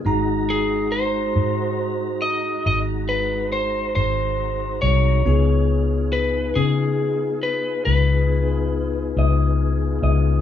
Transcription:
X:1
M:12/8
L:1/8
Q:3/8=46
K:Db
V:1 name="Clean electric guitar"
z12 | z8 z e2 e |]
V:2 name="Lead electric guitar"
z A c3 e e _c =c c2 d- | d2 _c A2 c c4- c z |]
V:3 name="Tine electric piano"
[A,EGb]12 | [_CEFA]12 |]
V:4 name="Tonewheel organ"
[A,EGb]12 | [_CEFA]12 |]
V:5 name="Fingered electric bass" clef=bass
A,,,3 A,,3 A,,,3 A,,,2 C,, | D,,3 D,3 D,,3 D,,2 D,, |]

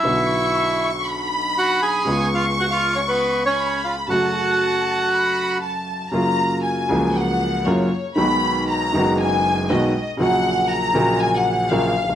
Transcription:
X:1
M:4/4
L:1/16
Q:1/4=118
K:F#m
V:1 name="Violin section"
c'8 b8 | c'12 b4 | a8 b4 a4 | [K:F#] a4 g4 f4 c3 z |
b4 a4 g4 d3 z | f4 a4 g f3 e3 z |]
V:2 name="Bandoneon"
[Ee]6- [Ee] z4 z [Ff]2 [Gg]2- | [Gg]2 [^E^e]2 [Ff] [Ee]2 [Cc] [B,B]3 [Cc]3 [Ee]2 | [Ff]12 z4 | [K:F#] z16 |
z16 | z16 |]
V:3 name="Grand piano" clef=bass
[B,,,B,,D,F,B,F]16 | [C,,C,G,B,^E]16 | [F,,C,F,A,F]16 | [K:F#] [F,,C,F,A,E]6 [C,,C,E,F,A,]6 [F,,C,F,A,E]2 z2 |
[B,,,B,,D,G,B,F]6 [F,,,F,,D,G,B,F]6 [B,,,B,,D,G,B,F]2 z2 | [A,,,A,,C,F,A,F]6 [A,,,A,,C,F,A,F]6 [A,,,A,,C,F,A,F]2 z/2 A,,,/2 B,,,/2 z/2 |]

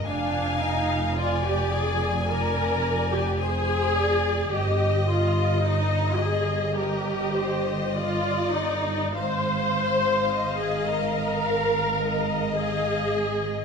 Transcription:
X:1
M:4/4
L:1/16
Q:1/4=53
K:Eb
V:1 name="Violin section"
a4 a8 a4 | e4 e4 e8 | f12 f2 e2 |]
V:2 name="Violin section"
f4 d4 d4 c2 d2 | e8 B2 c2 d4 | c4 e4 f2 e6 |]
V:3 name="Viola section"
D2 E2 F G A2 B3 G A4 | G2 F2 E2 A2 G4 F2 E2 | c4- c A B6 A4 |]
V:4 name="Cello section" clef=bass
F,,16 | G,,16 | A,,16 |]
V:5 name="Double bass section" clef=bass
F,,,16 | G,,,16 | A,,,16 |]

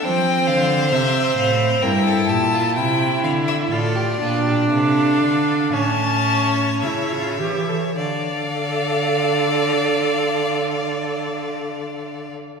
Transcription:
X:1
M:4/4
L:1/16
Q:1/4=56
K:Dm
V:1 name="Violin"
g2 f2 e2 f2 g2 a2 g2 f e | d4 f4 a4 e4 | f16 |]
V:2 name="Violin"
c8 B A G F E4 | A G F G A4 ^c8 | d16 |]
V:3 name="Viola"
C4 C4 E4 E4 | F2 D6 ^C4 E F G A | A16 |]
V:4 name="Cello" clef=bass
F,2 D,2 C,2 A,,2 G,,2 B,,2 C,2 D,2 | A,,2 B,,2 C,2 D,2 A,,4 ^C,2 E,2 | D,16 |]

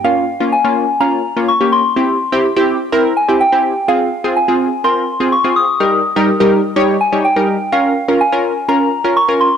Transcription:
X:1
M:4/4
L:1/16
Q:1/4=125
K:Bbdor
V:1 name="Synth bell"
f4 a4 b4 d'2 c'2- | c'6 z4 a2 g4 | f4 a4 c'4 d'2 e'2- | e'6 z4 a2 g4 |
f4 a4 b4 d'2 c'2 |]
V:2 name="Analog polysynth"
[B,DF]2 z [B,DF] z [B,DF]2 z [B,DF]2 z [B,DF] z [B,DG]2 z | [C=EG]2 z [CEG] z [CEG]2 z [CEB]2 z [CEG] z [CEG]2 z | [CFA]2 z [CFA] z [CFA]2 z [CFB]2 z [CFA] z [CFA]2 z | [G,EGB]2 z [G,EGB] z [G,EGB]2 z [G,EGd]2 z [G,EGd] z [G,EGB]2 z |
[DFB]2 z [DFB] z [DFB]2 z [DFB]2 z [DFB] z [DFB]2 z |]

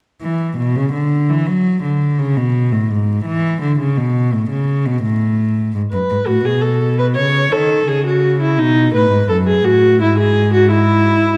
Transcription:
X:1
M:4/4
L:1/16
Q:1/4=84
K:Bdor
V:1 name="Viola"
z16 | z16 | z B2 F G A2 B c2 A2 G F2 E | ^D2 B2 A G F2 E G2 F E4 |]
V:2 name="Cello" clef=bass
z E,2 B,, C, D,2 E, F,2 D,2 C, B,,2 A,, | G,,2 E,2 D, C, B,,2 A,, C,2 B,, A,,4 | G,, F,, G,, A,, B,,4 C,2 ^D,2 C,4 | B,,2 A,, G,, F,,2 A,,2 G,,8 |]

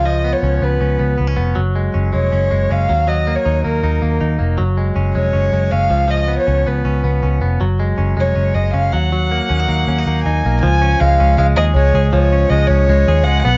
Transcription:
X:1
M:4/4
L:1/16
Q:1/4=159
K:C#mix
V:1 name="Violin"
d3 c3 B6 z4 | z6 c6 e4 | d3 c3 A6 z4 | z6 c6 e4 |
d3 c3 B6 z4 | z6 c4 d2 e2 f2- | f12 g4 | g4 e4 e2 d2 c4 |
c4 d2 c6 f2 f2 |]
V:2 name="Clean electric guitar"
E,2 B,2 C2 B,2 C2 B,2 B, C B,2 | F,2 G,2 C2 G,2 C2 G,2 C2 F,2 | F,2 A,2 D2 A,2 D2 A,2 D2 A,2 | F,2 G,2 C2 G,2 C2 G,2 C2 E,2 |
E,2 B,2 C2 B,2 C2 B,2 C2 B,2 | F,2 G,2 C2 G,2 C2 G,2 C2 F,2 | F,2 A,2 C D A,2 C D A,2 D2 A,2 | E,2 C2 G,2 C2 G,2 G2 G,2 G2 |
E,2 C2 G,2 C2 G,2 G2 G,2 B,2 |]
V:3 name="Picked electric bass" clef=bass
C,,4 C,,2 C,,2 C,,2 C,,2 C,,2 E,,,2 | F,,,4 F,,,2 E,,,2 F,,,2 F,,,2 F,,,2 D,,2- | D,,4 D,,2 D,,2 D,,2 D,,2 D,,2 E,,,2 | F,,,4 F,,,2 E,,,2 F,,,2 F,,,2 F,,,2 C,,2- |
C,,4 C,,2 C,,2 C,,2 C,,2 C,,2 E,,,2 | F,,,4 F,,,2 E,,,2 F,,,2 F,,,2 F,,,2 D,,2- | D,,4 D,,2 D,,2 D,,2 D,,2 D,,2 B,,,2 | C,,4 C,,2 C,,2 C,,2 D,,2 C,,2 C,,2 |
C,,4 C,,2 C,,2 C,,2 D,,2 C,,2 B,,,2 |]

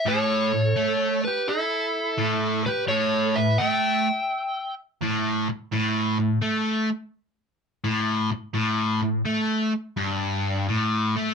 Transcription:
X:1
M:4/4
L:1/8
Q:"Swing" 1/4=85
K:Amix
V:1 name="Electric slide guitar"
c3 B A3 B | c e g3 z3 | z8 | z8 |]
V:2 name="Lead electric guitar"
A3 G E3 G | A B e3 z3 | z8 | z8 |]
V:3 name="Distorted electric guitar" clef=bass
A,, A,, A, z3 A,, z | A,, A,, A, z3 A,, z | A,, A,, A, z3 A,, z | A,, A,, A, z G,,2 A,, A, |]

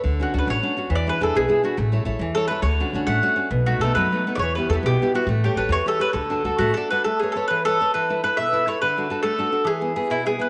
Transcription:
X:1
M:6/8
L:1/16
Q:3/8=137
K:D
V:1 name="Mandolin"
z2 F2 B2 c6 | d2 B2 A2 ^G4 F2 | z8 A2 B2 | c6 f6 |
z2 F2 A2 B4- B3/2 d/2 | c2 B2 A2 G4 F2 | z2 G2 B2 c2 A2 B2 | A6 F2 A2 B2 |
[K:A] A2 G2 A2 B2 A4 | B4 B2 e4 c2 | B6 A6 | G6 E2 G2 B2 |]
V:2 name="Nylon-string guitar"
D,2 [CDF]2 [CDF]2 A,2 [CDF]2 [CDF]2 | E,2 [DE^G]2 [DEG]2 B,,2 [DEG]2 [DEG]2 | A,2 [EAc]2 [EAc]2 E,2 [EAc]2 [EAc]2 | D,2 [CDF]2 [CDF]2 A,2 [CDF]2 [CDF]2 |
B,,2 [A,B,^D]2 [A,B,D]2 F,2 [A,B,D]2 [A,B,D]2 | E,2 [B,EG]2 [B,EG]2 B,,2 [B,EG]2 [B,EG]2 | A,2 [GAc]2 [GAc]2 E,2 [GAc]2 [GAc]2 | D,2 [DFA]2 [DFA]2 A,2 [DFAd]2 [DFAf]2 |
[K:A] A,2 [ABc]2 [ABc]2 E,2 [ABc]2 [ABc]2 | E,2 [EAB]2 [EAB]2 B,,2 [EAB]2 [EAB]2 | D,2 [DFA]2 [DFA]2 A,2 [DFA]2 [DFA]2 | E,2 [B,EG]2 [B,EG]2 B,,2 [B,EG]2 [B,EG]2 |]
V:3 name="Upright bass" clef=bass
D,,4 D,,2 A,,,2 z4 | E,,4 E,,2 B,,,2 z4 | A,,,4 A,,,2 E,,2 z4 | D,,4 D,,2 A,,,2 z4 |
B,,,4 B,,,2 F,,2 z4 | E,,4 E,,2 B,,,2 z4 | A,,,4 A,,,2 E,,2 z4 | D,,4 D,,2 A,,,2 z4 |
[K:A] z12 | z12 | z12 | z12 |]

